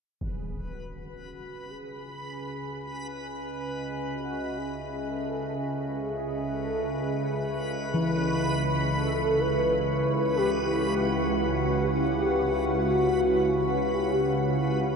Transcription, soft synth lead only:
0.22 G#4
0.72 F#4
1.21 F#4
1.70 G#4
2.18 G#4
4.10 F#4
4.57 G#4
5.08 A4
5.55 G#4
6.04 G#4
6.53 A4
7.00 G#4
8.91 A4
9.40 B4
9.88 B4
10.36 G4
11.33 F#4
11.81 G4
12.78 F#4
13.74 G4

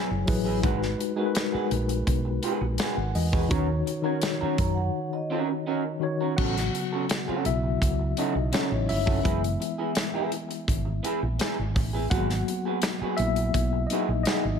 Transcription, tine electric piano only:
Already playing: F#3 E4 G#4 C#5
0.25 F#3 E4 G#4 B4
0.62 G#3 D#4 F#4 B4
1.15 G#3 D#4 F#4 A#4
1.26 B4
2.79 G#5
2.96 F#5
3.15 D#5
3.32 B4
3.47 D#3 D#4 F#4
3.52 C#5
4.02 D#3 D#4 F#4 C#5
5.99 D#3 D#4 F#4 C#5
6.36 C#3 F#3 B3 F#4 F#5
7.45 C#3 F#3 B3 E4 E5
8.19 D#4 D#5
8.54 C#4 C#5
8.89 E4 E5
9.24 E3 G#3 B3
12.10 F#3 A#3 B3 F#4 F#5
13.17 F#3 A#3 B3 E4 E5
13.87 D#4 D#5
14.23 D#5
14.28 D#4

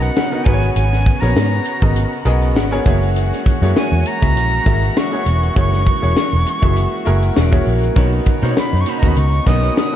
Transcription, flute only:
0.02 F#5
0.44 G#5
0.74 G#5
1.20 A#5
3.76 G#5
4.07 A#5
4.98 C#6
5.59 C#6
8.59 B5
8.81 C#6
8.89 B5
8.99 A#5
9.08 B5
9.18 C#6
9.47 D#6
9.77 D#6

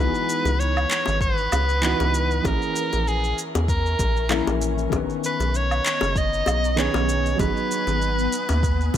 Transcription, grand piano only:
Already playing: E3 B3 D#4
0.00 F#4
1.81 E3 B3 D#4 F#4
2.42 E3 A#3
2.46 C#4 G#4
4.29 E3 A#3 C#4 E4
4.90 D#3 B3
4.94 C#4 B4
6.76 D#3 B3 C#4 G#4
7.35 F#3 B3 D#4
7.42 G#4

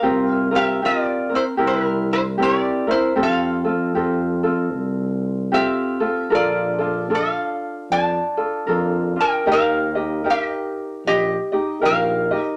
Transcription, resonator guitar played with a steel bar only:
Already playing: A#4 F5
0.32 E5
0.55 G4 E5
0.85 F4 D#5
1.04 D5
1.35 E4 C5
1.67 E4 B4
1.85 A#4
2.13 E4 C5
2.42 G4 C#5
2.62 D5
2.91 E4 C5
3.23 A4 F5
5.54 G4 E5
6.35 F4 D5
7.15 A4 F5
7.92 D5 A5
9.21 A#4 G5
9.52 A#4 F5
10.30 G4 D#5
11.07 G4 D#5
11.85 A#4 F5
12.44 D#5

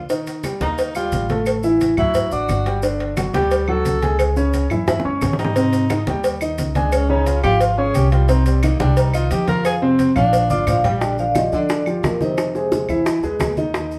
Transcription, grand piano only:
0.10 D#3 D#4 D#5
0.44 G3 G4 G5
0.61 A#3 A#4 A#5
0.96 G3 G4 G5
1.30 A3 A4 A5
1.64 E3 E4 E5
1.98 F#3 F#4 F#5
2.32 D4 D5 D6
2.66 G3 G4 G5
2.83 D3 D4 D5
3.17 F#3 F#4 F#5
3.34 G3 G4 G5
3.68 F#3 F#4 F#5
4.02 G#3 G#4 G#5
4.36 C#3 C#4 C#5
4.71 E3 E4 E5
5.05 C#4 C#5 C#6
5.39 G3 G4 G5
5.56 C3 C4 C5
5.90 D#3 D#4 D#5
6.07 G3 G4 G5
6.41 D#3 D#4 D#5
6.76 G#3 G#4 G#5
7.10 C#3 C#4 C#5
7.44 F3 F4 F5
7.78 C#4 C#5 C#6
8.11 G3 G4 G5
8.28 C3 C4 C5
8.63 D#3 D#4 D#5
8.80 G3 G4 G5
9.13 D#3 D#4 D#5
9.48 F3 F4 F5
9.82 C3 C4 C5
10.15 F3 F4 F5
10.50 D4 D5 D6
10.84 G3 G4 G5
11.01 D3 D4 D5
11.36 F3 F4 G4
11.53 D3 D4 D5
11.87 F3 F4 G4
12.21 D#3 D#4 D#5
12.55 G#3 G#4 C5
12.89 E3 E4 E5
13.23 G#3 G#4 B4
13.57 D#3 D#4 D#5
13.75 D#3 D#4 D#5

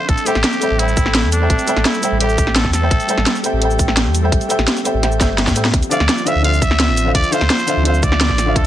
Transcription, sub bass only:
0.09 A1
0.35 A1
0.71 A1
0.97 A1
1.23 E2
1.50 A1
1.76 A1
2.12 A1
2.38 A1
2.65 E2
2.91 A1
3.17 A1
3.53 A1
3.79 A1
4.06 E2
4.32 A1
4.58 A1
4.94 A1
5.20 G1
5.47 A2
5.74 D2
6.00 D2
6.35 D2
6.62 D2
6.88 A1
7.15 D2
7.41 D2
7.77 D2
8.03 D2
8.29 A1
8.56 D2

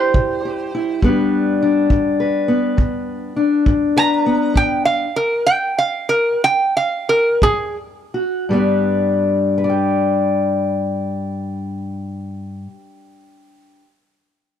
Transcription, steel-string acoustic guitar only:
Already playing: G3 E4 G4 C5
0.15 C3
0.45 G4
0.75 E4
1.02 G2 G3 B3 D4 B4
1.62 D4
1.91 G2
2.20 B4
2.48 B3
2.77 G2
3.36 D4
3.68 G2
3.96 B4
4.26 B3
4.54 G2
7.42 G#2
8.14 F#4
8.49 G2 G3
8.53 B3 D4 B4
9.58 B4
9.64 D5
9.69 G5

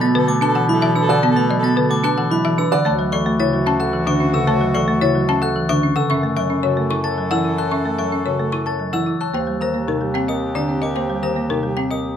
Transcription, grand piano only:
0.01 F#4
0.14 A4
0.41 B4
0.68 E4
0.96 B4
1.09 D5
1.36 B4
1.63 F#4
1.77 A4
2.04 B4
2.31 E4
2.58 B4
2.72 D5
2.85 C#5
3.12 A4
3.39 E4
3.52 F#4
3.80 A4
4.07 D4
4.34 A4
4.47 C#5
4.74 A4
5.01 E4
5.15 F#4
5.42 A4
5.69 D4
5.96 A4
6.09 E5
6.36 C#5
6.64 F#4
6.77 A4
7.04 C#5
7.31 E4
7.58 C#5
7.72 E5
7.99 C#5
8.26 F#4
8.40 A4
8.66 C#5
8.93 E4
9.21 C#5
9.34 C5
9.61 A#4
9.88 D#4
10.02 G4
10.29 A#4
10.56 D4
10.83 A#4
10.96 C5
11.23 A#4
11.50 D#4
11.64 G4
11.91 A#4

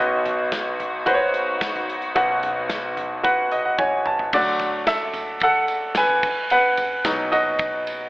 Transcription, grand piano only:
Already playing: B1 B2 F#4 B4 D#5
1.06 F#4 B4 C5
1.14 C#5
2.15 B1 B2 F#4 B4 F#5
3.23 F#4 B4 F#5
3.52 D#5
3.65 F#5
3.78 F#4 C#5 G#5
4.07 A5
4.33 D3 F#3 A3 F#4 D5
4.88 A4 E5
5.43 A4 F#5
5.97 B4 G#5
6.51 B4 F#5
7.05 B2 F#3 D#4
7.32 F#4 D#5

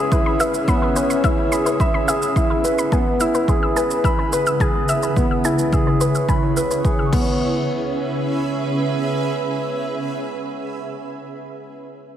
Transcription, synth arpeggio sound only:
0.12 B4
0.26 B5
0.40 E5
0.68 B5
0.82 B4
0.96 B4
1.10 B5
1.24 E5
1.52 B5
1.66 B4
1.80 B4
1.94 B5
2.08 E5
2.36 B5
2.50 B4
2.64 B4
2.79 B5
2.92 G#5
3.21 E6
3.35 B4
3.49 B4
3.63 E6
3.76 G#5
4.05 E6
4.19 B4
4.33 B4
4.47 E6
4.61 G#5
4.89 E6
5.03 B4
5.17 B4
5.31 E6
5.45 G#5
5.73 E6
5.87 B4
6.01 B4
6.15 E6
6.29 G#5
6.57 E6
6.71 B4
6.85 B4
6.99 E6
7.13 B4

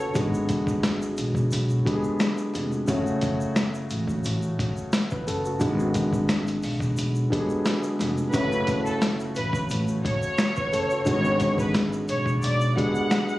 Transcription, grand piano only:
Already playing: A4 B4
0.01 F#4
0.14 D3 F#3 G#3 B3 F#4
1.85 D3 F#3 G#3 B3 G4
1.94 G#4
2.87 C#3 F#3 A3 C#4 F#4
5.11 B4
5.27 A4
5.46 F#4
5.59 D3 F#3 G#3 B3 F#4
7.30 D3 F#3 G#3 B3 G4
7.39 G#4
8.33 C#3 F#3 A3 C#4 F#4
10.56 B4
10.72 A4
10.92 F#4
11.05 D3 F#3 G#3 B3 F#4
12.76 D3 F#3 G#3 B3 G4
12.85 G#4

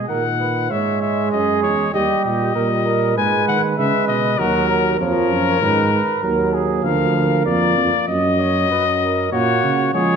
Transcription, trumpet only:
0.09 F#5
0.71 E5
1.02 E5
1.32 D#5
1.63 C#5
1.94 D#5
2.25 D#5
3.17 G#5
3.48 F#5
3.78 E5
4.08 D#5
4.39 A#4
5.00 A#4
6.84 F5
7.46 D5
8.08 D#5
9.32 C#5
9.94 C#5

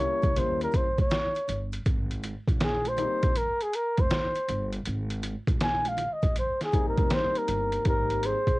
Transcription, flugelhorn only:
Already playing: C#5
0.38 C5
0.63 A#4
0.76 C5
1.00 C#5
2.64 G#4
2.88 C5
3.38 A#4
3.63 G#4
3.75 A#4
4.01 C5
5.63 G#5
5.88 F5
6.13 D#5
6.38 C5
6.63 G#4
6.89 A#4
7.14 C5
7.38 A#4
7.88 A#4
8.26 C5

